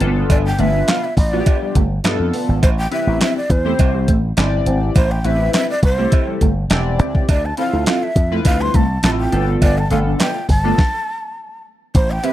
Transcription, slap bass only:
0.01 0.23 G1 medium
0.30 0.53 G1 loud
0.59 0.82 G1 loud
1.17 1.40 A1 medium
1.75 1.98 G1 medium
2.04 2.16 G2 medium
2.20 2.30 F2 medium
2.49 2.60 G#1 medium
2.63 2.86 A1 loud
3.07 3.18 A1 loud
3.50 3.73 E2 medium
3.79 4.08 C2 loud
4.08 4.31 A1 medium
4.37 4.60 G1 medium
4.66 4.89 G#1 medium
4.96 5.19 A1 loud
5.25 5.48 A1 loud
5.83 6.06 C2 medium
6.41 6.64 G1 medium
6.70 6.99 E1 medium
6.99 7.22 C#2 loud
7.29 7.52 D2 loud
7.73 7.84 D2 medium
8.16 8.39 F2 medium
8.45 8.68 D2 loud
8.74 8.97 C2 medium
9.04 9.26 A1 medium
9.33 9.55 G1 medium
9.62 9.85 G1 loud
9.91 10.14 G1 medium
10.49 10.72 G1 medium
11.95 12.18 A1 loud

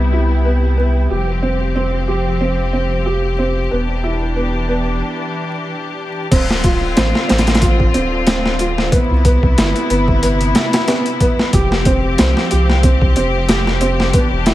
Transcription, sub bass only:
0.00 1.07 C2 medium
1.10 3.68 F1 medium
3.72 5.02 E1 medium
6.32 6.94 D1 loud
6.97 7.13 A1 medium
7.30 7.92 A1 medium
7.95 8.90 D1 medium
9.10 9.55 C2 loud
9.58 9.74 G1 medium
9.90 10.53 G1 medium
11.54 12.16 F1 medium
12.19 12.35 C2 medium
12.52 13.14 C2 medium
13.17 14.12 F1 loud
14.32 14.54 E1 loud

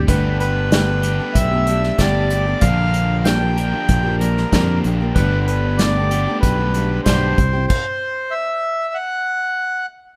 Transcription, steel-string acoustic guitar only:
0.08 0.70 G2 medium
0.08 0.71 D3 medium
0.08 0.71 A3 medium
0.08 0.72 B3 medium
0.08 0.73 D4 medium
0.08 0.73 G4 medium
0.71 0.87 G2 medium
0.71 0.88 D3 medium
0.71 0.88 A3 medium
0.71 0.88 B3 medium
0.71 0.87 D4 medium
0.71 0.85 G4 medium
0.87 1.02 A3 soft
0.87 1.03 B3 soft
0.87 1.04 D4 soft
0.87 1.03 G4 medium
1.03 1.19 A3 medium
1.03 1.20 B3 medium
1.03 1.19 D4 medium
1.03 1.18 G4 medium
1.20 1.53 A3 soft
1.20 1.52 B3 soft
1.20 1.51 D4 soft
1.20 1.50 G4 medium
1.51 1.66 A3 soft
1.51 1.67 B3 soft
1.51 1.67 D4 soft
1.51 1.67 G4 soft
1.67 1.98 A3 medium
1.67 1.99 B3 medium
1.67 1.99 D4 medium
1.67 2.00 G4 medium
1.99 2.30 G2 medium
1.99 2.31 D3 medium
1.99 2.29 A3 medium
1.99 2.30 B3 medium
1.99 2.31 D4 medium
1.99 2.31 G4 medium
2.30 2.46 A3 soft
2.30 2.47 B3 medium
2.30 2.46 D4 medium
2.30 2.45 G4 medium
2.46 2.62 A3 soft
2.46 2.63 B3 soft
2.46 2.63 D4 soft
2.46 2.62 G4 medium
2.62 3.23 A#2 medium
2.62 3.24 D3 medium
2.62 3.25 F3 medium
2.62 3.25 A#3 medium
2.62 3.26 D4 medium
2.62 3.26 G4 medium
3.24 3.41 A#2 medium
3.24 3.41 D3 medium
3.24 3.41 F3 medium
3.24 3.40 A#3 medium
3.24 3.39 D4 medium
3.24 3.38 G4 medium
3.39 3.55 F3 soft
3.39 3.56 A#3 soft
3.39 3.57 D4 medium
3.39 3.56 G4 medium
3.56 3.72 F3 medium
3.56 3.73 A#3 medium
3.56 3.72 D4 medium
3.56 3.71 G4 medium
3.72 4.06 F3 soft
3.72 4.05 A#3 soft
3.72 4.03 D4 soft
3.72 4.02 G4 medium
4.03 4.18 F3 soft
4.03 4.19 A#3 soft
4.03 4.21 D4 medium
4.03 4.20 G4 medium
4.19 4.51 F3 medium
4.19 4.52 A#3 medium
4.19 4.53 D4 medium
4.23 4.54 G4 medium
4.53 4.84 A#2 medium
4.53 4.84 D3 medium
4.53 4.82 F3 medium
4.53 4.84 A#3 medium
4.53 4.84 D4 medium
4.53 4.85 G4 medium
4.84 5.00 F3 medium
4.84 5.00 A#3 medium
4.84 5.01 D4 medium
4.84 4.99 G4 medium
5.00 5.17 F3 soft
5.00 5.17 A#3 soft
5.00 5.17 D4 soft
5.00 5.16 G4 medium
5.16 5.79 G2 medium
5.16 5.80 D3 medium
5.16 5.80 A3 medium
5.16 5.80 B3 medium
5.16 5.81 D4 medium
5.16 5.81 G4 medium
5.80 5.95 G2 medium
5.80 5.96 D3 medium
5.80 5.96 A3 medium
5.80 5.96 B3 medium
5.80 5.97 D4 medium
5.80 5.96 G4 medium
5.97 6.12 A3 soft
5.97 6.13 B3 soft
5.97 6.13 D4 soft
5.97 6.12 G4 medium
6.13 6.28 A3 medium
6.13 6.28 B3 medium
6.13 6.28 D4 medium
6.13 6.26 G4 medium
6.27 6.60 A3 soft
6.27 6.59 B3 soft
6.27 6.58 D4 soft
6.27 6.57 G4 medium
6.58 6.73 A3 soft
6.58 6.75 B3 soft
6.58 6.75 D4 soft
6.58 6.74 G4 soft
6.74 7.06 A3 medium
6.74 7.07 B3 medium
6.74 7.07 D4 medium
6.74 7.07 G4 medium
7.06 7.38 G2 medium
7.06 7.38 D3 medium
7.06 7.37 A3 medium
7.06 7.39 D4 medium
7.06 7.39 G4 medium
7.37 7.53 G3 medium
7.37 7.54 C4 medium
7.37 7.54 E4 medium
7.37 7.52 G4 medium
7.53 7.71 C4 soft
7.53 7.70 E4 soft
7.53 7.69 G4 medium

